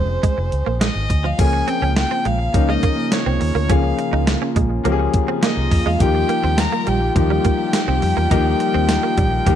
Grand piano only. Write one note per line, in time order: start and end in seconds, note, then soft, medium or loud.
0.00 1.38 F3 medium
0.00 1.40 C4 medium
0.00 1.39 C#4 medium
0.00 1.39 G#4 medium
1.38 2.20 F3 medium
1.38 2.21 A#3 medium
1.38 2.21 C#4 medium
1.38 2.21 G#4 medium
2.54 3.36 F3 medium
2.54 3.36 A#3 medium
2.54 3.36 C#4 medium
2.54 3.36 D#4 medium
3.69 4.51 F3 medium
3.69 4.51 A#3 medium
3.69 4.52 C#4 medium
3.69 4.52 G#4 medium
4.84 5.66 F3 medium
4.84 5.67 A#3 medium
4.84 5.67 C#4 medium
4.84 4.92 G4 medium
4.92 5.70 G#4 loud
6.00 6.82 F3 medium
6.00 6.82 A#3 medium
6.00 6.82 D#4 medium
6.00 6.83 G4 medium
7.15 7.97 F3 medium
7.15 7.98 A#3 medium
7.15 7.98 D#4 medium
7.15 7.98 G4 medium
8.31 9.13 F3 medium
8.31 9.13 A#3 medium
8.31 9.13 D#4 medium
8.31 9.13 G4 loud
9.46 9.55 F3 medium
9.46 9.55 A#3 medium
9.46 9.55 D#4 medium
9.46 9.55 G4 medium